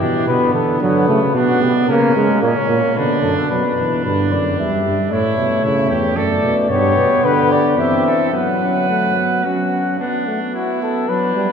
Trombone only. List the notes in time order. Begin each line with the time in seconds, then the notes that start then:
Already playing: E3
0.28 D3
0.82 F#3
1.08 A3
1.36 B3
1.89 A#3
2.16 G#3
2.42 A#3
2.70 A#3
2.97 D3
3.51 F#3
3.78 E3
4.05 D3
4.59 G3
5.12 A3
6.17 A3
6.71 B3
7.78 C4
8.33 B3
8.62 C#4
8.89 A3
9.17 B3
9.45 C#4
10.00 B3
10.27 A3
10.55 B3
11.09 F#3
11.35 G3